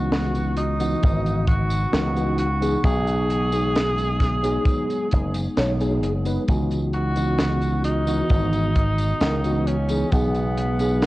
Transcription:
Already playing: C#2 C#3 E3 B3 D#4 F#4
0.12 snare, closed hi-hat, tambourine
0.35 closed hi-hat, tambourine
0.57 D#4, closed hi-hat
0.79 E3 B3 D#4 F#4, closed hi-hat, tambourine
1.03 G#1, kick, closed hi-hat, tambourine
1.26 closed hi-hat, tambourine
1.47 F#4, kick, closed hi-hat
1.70 closed hi-hat, tambourine
1.92 C#2 E3 B3 D#4 A#4, snare, closed hi-hat, tambourine
2.15 E3 B3 D#4 F#4, closed hi-hat, tambourine
2.38 F#4, closed hi-hat
2.61 E3 B3 D#4 G#4, closed hi-hat, tambourine
2.83 B1 F#3 G#3 B3 D#4 G#4, kick, closed hi-hat, tambourine
3.07 closed hi-hat, tambourine
3.30 closed hi-hat
3.52 F#3 B3 D#4 G#4, closed hi-hat, tambourine
3.75 snare, closed hi-hat, tambourine
3.98 closed hi-hat, tambourine
4.20 kick, snare, closed hi-hat
4.42 F#3 B3 D#4 G#4, closed hi-hat, tambourine
4.65 kick, closed hi-hat, tambourine
4.90 closed hi-hat, tambourine
5.11 F#1, kick, closed hi-hat
5.34 closed hi-hat, tambourine
5.56 B1 F#3 B3 D#4 C#5, snare, closed hi-hat, tambourine
5.79 F#3 B3 D#4 G#4, closed hi-hat, tambourine
6.02 F#1, closed hi-hat
6.25 F#3 B3 D#4 B4, closed hi-hat, tambourine
6.47 C#2 C#3 E3 B3 D#4 F#4, kick, closed hi-hat, tambourine
6.71 closed hi-hat, tambourine
6.93 F#4, closed hi-hat
7.16 E3 B3 D#4 F#4, closed hi-hat, tambourine
7.38 snare, closed hi-hat, tambourine
7.62 closed hi-hat, tambourine
7.84 D#4, closed hi-hat
8.07 E3 B3 D#4 F#4, closed hi-hat, tambourine
8.29 G#1, kick, closed hi-hat, tambourine
8.53 closed hi-hat, tambourine
8.75 kick, closed hi-hat
8.98 closed hi-hat, tambourine
9.20 C#2 E3 B3 D#4 A#4, snare, closed hi-hat, tambourine
9.43 E3 B3 D#4 F#4, closed hi-hat, tambourine
9.67 C#4, closed hi-hat
9.89 E3 B3 D#4 G#4, closed hi-hat, tambourine
10.11 B1 F#3 G#3 B3 D#4 G#4, kick, closed hi-hat, tambourine
10.35 closed hi-hat, tambourine
10.58 closed hi-hat
10.79 F#3 B3 D#4 G#4, closed hi-hat, tambourine
11.02 snare, closed hi-hat, tambourine

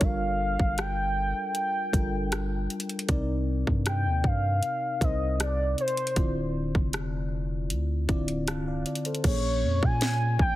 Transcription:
0.00 G1 G3 D4 F4 A4 A#4 F5, kick, closed hi-hat
0.60 G1, kick
0.78 G5, cross-stick, closed hi-hat
1.55 G5, closed hi-hat
1.92 G1 G3 D4 F4 A4 A#4, kick, closed hi-hat
2.32 cross-stick, closed hi-hat
2.70 closed hi-hat
2.80 closed hi-hat
2.89 closed hi-hat
2.99 closed hi-hat
3.08 C2 C3 C4 D#4 A#4 D5, kick, closed hi-hat
3.67 G2, kick
3.86 G5, cross-stick, closed hi-hat
4.05 D#2
4.24 G2 F5, kick
4.63 closed hi-hat
5.00 C2 C3 C4 D#4 A#4 C5 D#5, kick, closed hi-hat
5.40 D5, cross-stick, closed hi-hat
5.78 C5, closed hi-hat
5.88 closed hi-hat
5.97 closed hi-hat
6.07 closed hi-hat
6.16 D1 D3 C4 E4 F4 D5, kick, closed hi-hat
6.75 F1, kick
6.93 cross-stick, closed hi-hat
7.70 D2, closed hi-hat
8.08 D1 D3 C4 E4 F4 D5, kick, closed hi-hat
8.28 closed hi-hat
8.47 C1 A5, cross-stick, closed hi-hat
8.67 D5 F5
8.86 D5, closed hi-hat
8.95 closed hi-hat
9.05 A4 C5, closed hi-hat
9.15 closed hi-hat
9.24 A#1 A#2 A#3 C#4 G#4 C#5, kick, closed hi-hat, crash
9.63 F2
9.83 A#2 G#5, kick
10.01 snare, closed hi-hat
10.39 A#1 G5, kick

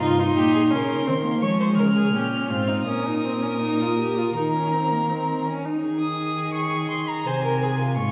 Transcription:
0.01 G2 D#4 F4 C6
0.19 D#4 F4
0.36 A#2 G4
0.55 G#4
0.71 C#3 C#4 A#4
1.07 D#3 C4
1.24 A#3
1.42 F3 G#3 C#5 C#6
1.60 C5
1.77 C#3 A#4 F6
1.96 G#4
2.14 A#2 C#4 G4
2.50 G#2 C4 F4
2.68 D#4
2.87 A#2 C#4 A#4 D#6
3.06 D#4
3.24 C4
3.42 C#4
3.61 D#4
3.81 F4
4.00 G4
4.18 F4
4.36 D#3 D#4 A#4 A#5
4.55 C#4
4.73 C4
4.91 A#3
5.10 C4
5.46 C#4
5.65 D#4
5.83 D#3 G#4
6.00 D#6
6.54 C#6
6.91 C6
7.08 A#5
7.26 C3 C5 G#5
7.44 A#4
7.63 G#4
7.81 F4
7.97 G#2 C#6

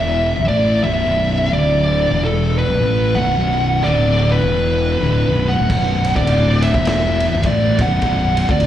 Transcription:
Already playing: E1 E2 B2 E3 E5
0.37 B0 B1 F#2
0.48 A1 A2 E3 A3 D5
0.83 B0 B1 F#2 B2 E5
1.06 B0 B1 F#2 B2
1.52 D1 D2 A2 D3 D5
2.10 E1 E2 B2 E3
2.25 A4
2.58 B4
2.68 B0 B1 F#2
2.80 A1 A2 E3 A3
3.15 B0 B1 F#2 B2 F#5
3.37 B0 B1 F#2 B2
3.84 D1 D2 A2 D3 D5
4.31 B4
4.43 E1 E2 B2 E3
5.00 D1 D2 A2 D3
5.29 B0 B1 F#2 B2
5.48 F#5
5.58 D1 D2 A2
5.70 B0 B1 F#2 B2, kick, crash
6.04 ride
6.16 D1 D2 A2 D3 D5, kick
6.27 ride
6.62 E5, ride
6.74 E1 E2 B2 E3, kick
6.85 E5, snare, ride
7.20 ride
7.32 B0 B1 F#2
7.43 A1 A2 E3 A3 D5, kick, ride
7.79 B0 B1 F#2 B2 F#5, kick, ride
8.02 B0 B1 F#2 B2, kick, ride
8.37 ride
8.49 D1 D2 A2 D3 D5, kick
8.60 ride

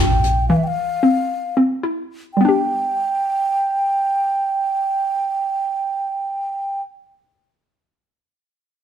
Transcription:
Already playing: A#1 F4
0.00 G5
0.24 closed hi-hat
0.49 E3 F5
0.56 E5
0.64 F5 G5
1.03 C4
1.57 C4
1.83 E4
2.34 G3 G5
2.41 B3
2.45 D4 G4

